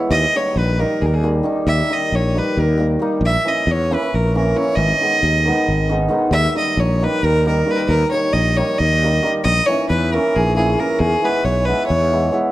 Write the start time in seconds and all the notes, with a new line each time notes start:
Already playing: E3 G#3
0.11 D#2 D#5
0.35 D#3 G3 A#3 D#4 C#5
0.56 A#1 B4
0.79 D#3 G3 A#3 D#4 A#4
1.01 D#2 G#4
1.05 A#4
1.14 G#4
1.23 D#3 G3 A#3 D#4
1.43 D#3 G3 A#3 D#4
1.67 D#2 E5
1.90 D#3 G3 A#3 D#4 D#5
2.12 A#1 C#5
2.35 D#3 G3 A#3 D#4 B4
2.57 D#2 A#4
2.78 D#3 G3 A#3 D#4
2.99 D#3 G3 A#3 D#4
3.21 A#1
3.26 E5
3.44 E3 A#3 C#4 E4 D#5
3.67 E2
3.71 C#5
3.90 E3 A#3 C#4 E4 B4
4.14 A#1 A#4
4.35 E3 A#3 C#4 E4 A#4
4.55 E3 A#3 C#4 E4 C#5
4.76 G#1 D#5
5.01 D#3 G#3 B3 D#4
5.23 D#2
5.45 D#3 G#3 B3 D#4
5.68 G#1
5.89 D#3 G#3 B3 D#4
6.08 D#3 G#3 B3 D#4
6.31 D#2 E5
6.55 D#3 G3 A#3 D#4 D#5
6.77 A#1 C#5
7.02 D#3 G3 A#3 D#4 B4
7.23 D#2 A#4
7.45 D#3 G3 A#3 D#4 A#4
7.66 D#3 G3 A#3 D#4
7.71 B4
7.75 A#4 B4
7.88 D#2 A#4
8.11 D#3 G3 A#3 D#4 C#5
8.33 A#1 D#5
8.57 D#3 G3 A#3 D#4 C#5
8.79 D#2 D#5
9.03 D#3 G3 A#3 D#4
9.23 D#3 G3 A#3 D#4
9.44 A#1 D#5
9.66 E3 A#3 C#4 E4 C#5
9.89 E2 B4
10.13 E3 A#3 C#4 E4 A#4
10.36 A#1 G#4
10.56 E3 A#3 C#4 E4 G#4
10.78 E3 A#3 C#4 E4 A#4
10.99 E2 G#4
11.22 E3 G#3 B3 E4 B4
11.44 B1 C#5
11.65 E3 G#3 B3 E4 B4
11.86 E2 C#5
12.11 E3 G#3 B3 E4
12.31 E3 G#3 B3 E4